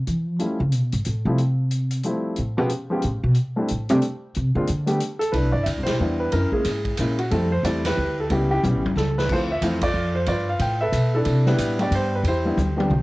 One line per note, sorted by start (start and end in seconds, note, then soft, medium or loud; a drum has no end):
0.07 0.27 E3 medium
0.07 closed hi-hat soft
0.27 0.35 F3 loud
0.39 0.58 F3 medium
0.39 0.58 G3 soft
0.39 0.58 A3 soft
0.39 0.58 C#4 soft
0.39 0.59 E4 medium
0.39 closed hi-hat soft
0.60 0.74 C#3 medium
0.72 0.92 B2 medium
0.72 closed hi-hat medium
0.92 1.05 G#2 medium
0.92 closed hi-hat soft
1.05 1.25 A2 medium
1.05 closed hi-hat medium
1.25 2.00 C3 medium
1.25 1.37 F3 medium
1.25 1.37 G3 medium
1.25 1.38 A3 medium
1.25 1.38 C4 medium
1.25 1.38 E4 medium
1.38 closed hi-hat soft
1.71 closed hi-hat medium
1.91 closed hi-hat medium
2.03 2.37 F3 medium
2.03 2.37 G3 medium
2.03 2.37 A3 medium
2.03 2.38 C4 medium
2.03 2.38 E4 medium
2.03 closed hi-hat soft
2.36 2.58 A2 medium
2.36 closed hi-hat soft
2.57 2.70 B2 loud
2.57 2.69 F3 medium
2.57 2.69 G#3 medium
2.57 2.69 B3 medium
2.57 2.69 C#4 medium
2.57 2.70 G4 medium
2.70 closed hi-hat medium
2.90 3.01 F3 medium
2.90 3.02 G#3 medium
2.90 3.02 B3 medium
2.90 3.02 C#4 medium
2.90 3.03 G4 medium
3.02 3.23 A2 medium
3.02 closed hi-hat soft
3.24 3.36 B2 loud
3.35 closed hi-hat soft
3.56 3.67 G3 medium
3.56 3.68 A3 medium
3.56 3.68 C4 medium
3.56 3.68 D4 medium
3.56 3.68 E4 medium
3.68 3.90 A2 medium
3.68 closed hi-hat medium
3.89 3.97 C3 loud
3.89 4.01 G3 medium
3.89 4.01 A3 medium
3.89 4.02 C4 medium
3.89 4.02 D4 medium
3.89 4.02 G4 medium
3.89 closed hi-hat medium
4.02 closed hi-hat soft
4.35 4.55 C3 medium
4.35 closed hi-hat soft
4.55 4.67 D3 medium
4.55 4.66 G#3 medium
4.55 4.66 A#3 medium
4.55 4.67 C4 medium
4.55 4.67 D4 medium
4.55 4.67 F4 medium
4.67 4.99 D3 medium
4.67 closed hi-hat medium
4.86 4.98 G3 medium
4.86 4.99 A3 medium
4.86 4.99 B3 medium
4.86 4.99 D4 medium
4.86 4.99 G4 medium
4.86 closed hi-hat soft
5.00 closed hi-hat medium
5.19 5.33 A4 loud
5.19 closed hi-hat medium
5.32 5.44 C2 medium
5.32 5.84 D4 medium
5.32 5.83 E4 medium
5.32 5.51 B4 medium
5.32 ride medium
5.44 5.54 B1 medium
5.52 5.65 G1 medium
5.52 5.66 D5 medium
5.63 5.77 D2 medium
5.63 5.68 E5 medium
5.63 hi-hat pedal medium
5.63 ride medium
5.77 5.87 C2 medium
5.83 6.01 E4 medium
5.83 6.28 G4 medium
5.83 6.19 C5 medium
5.83 snare medium
5.83 ride medium
5.88 5.98 B1 medium
6.00 6.31 E2 medium
6.00 6.32 G3 medium
6.00 6.32 B3 medium
6.00 6.33 D4 medium
6.00 6.33 E4 medium
6.20 6.31 B4 medium
6.32 6.51 F#2 medium
6.32 6.53 C#4 medium
6.32 6.52 E4 medium
6.32 6.51 A#4 medium
6.32 ride medium
6.52 6.64 G#3 medium
6.52 6.64 A#3 medium
6.52 6.65 C#4 medium
6.52 6.99 E4 medium
6.52 7.20 G#4 medium
6.52 muted upright bass stroke soft
6.52 kick soft
6.64 6.97 G#2 medium
6.64 snare soft
6.64 hi-hat pedal medium
6.64 ride medium
6.85 kick medium
6.85 ride soft
6.97 7.30 A#2 medium
6.97 7.16 G#3 medium
6.97 7.17 A#3 medium
6.97 7.17 C#4 medium
6.97 7.17 E4 medium
6.97 hi-hat pedal medium
6.97 ride medium
7.19 7.32 F#4 medium
7.19 ride soft
7.31 7.63 F2 medium
7.31 7.49 G3 medium
7.31 7.49 A3 soft
7.31 7.50 C4 medium
7.31 7.50 E4 medium
7.31 7.52 A4 medium
7.31 ride medium
7.52 7.63 C5 medium
7.63 7.95 E2 medium
7.63 7.82 G3 medium
7.63 7.83 A3 medium
7.63 7.83 C4 medium
7.63 7.83 E4 medium
7.63 7.85 D5 medium
7.63 hi-hat pedal medium
7.63 ride medium
7.85 8.28 E4 medium
7.85 8.28 G4 medium
7.85 8.16 B4 loud
7.85 snare medium
7.85 ride medium
7.97 8.29 D2 medium
8.20 8.30 A4 medium
8.30 8.62 C#2 medium
8.30 8.48 G3 medium
8.30 8.49 B3 medium
8.30 8.49 C#4 medium
8.30 8.49 E4 medium
8.30 8.49 G4 medium
8.30 ride medium
8.51 8.63 C#4 medium
8.51 8.94 E4 medium
8.51 8.64 G4 loud
8.63 8.74 B1 medium
8.63 8.81 G3 medium
8.63 8.82 B3 medium
8.63 8.82 C#4 medium
8.63 8.82 G4 medium
8.63 hi-hat pedal soft
8.63 high tom soft
8.74 8.85 A1 medium
8.85 8.95 G1 medium
8.85 high tom medium
8.96 9.28 C#2 medium
8.96 9.17 A4 medium
8.96 snare medium
9.18 9.30 B4 medium
9.18 snare medium
9.29 9.61 D2 medium
9.29 9.48 F3 medium
9.29 9.48 A3 medium
9.29 9.49 C4 soft
9.29 9.49 E4 medium
9.29 9.38 C5 medium
9.29 kick medium
9.29 crash medium
9.34 9.81 F4 medium
9.52 9.63 E5 medium
9.61 9.93 E2 medium
9.61 9.80 F3 medium
9.61 9.80 A3 medium
9.61 9.81 C4 medium
9.61 9.81 E4 medium
9.61 9.81 F5 medium
9.61 hi-hat pedal medium
9.61 ride medium
9.81 10.26 F4 medium
9.81 10.25 A4 medium
9.81 10.16 D5 loud
9.81 kick medium
9.81 ride medium
9.94 10.26 F2 medium
10.15 10.27 C5 medium
10.26 10.59 G2 medium
10.26 10.78 F4 medium
10.26 10.78 B4 medium
10.26 10.49 D5 loud
10.26 ride medium
10.49 10.60 F5 medium
10.59 10.92 A2 medium
10.59 10.80 G5 medium
10.59 ride medium
10.81 11.13 A4 medium
10.81 11.24 B4 medium
10.81 11.14 E5 medium
10.92 11.25 B2 medium
10.92 hi-hat pedal medium
10.92 ride medium
11.15 11.46 D4 medium
11.15 11.47 E4 medium
11.15 11.48 A4 medium
11.25 11.58 C3 medium
11.25 ride medium
11.46 11.77 G3 medium
11.46 11.77 B3 medium
11.46 11.78 D4 medium
11.46 11.78 E4 medium
11.46 11.78 B4 medium
11.46 snare soft
11.58 11.91 A2 medium
11.58 hi-hat pedal medium
11.58 ride medium
11.79 12.22 G3 medium
11.79 12.22 B3 medium
11.79 12.23 D4 medium
11.79 12.23 G4 medium
11.79 11.92 D5 medium
11.79 ride soft
11.91 12.23 G2 medium
11.91 ride medium
11.95 12.12 C5 medium
12.15 12.20 B4 medium
12.23 12.56 E2 medium
12.23 ride medium
12.28 12.45 E4 medium
12.28 12.76 G4 medium
12.28 13.02 C5 medium
12.45 12.56 G3 medium
12.45 12.57 B3 medium
12.45 12.57 D4 medium
12.45 12.57 E4 medium
12.57 12.89 D2 medium
12.57 hi-hat pedal medium
12.57 high tom soft
12.77 12.89 G3 medium
12.77 12.89 B3 medium
12.77 12.89 D4 medium
12.77 12.89 G4 medium
12.77 high tom medium
12.90 13.02 C2 medium
12.90 mid tom medium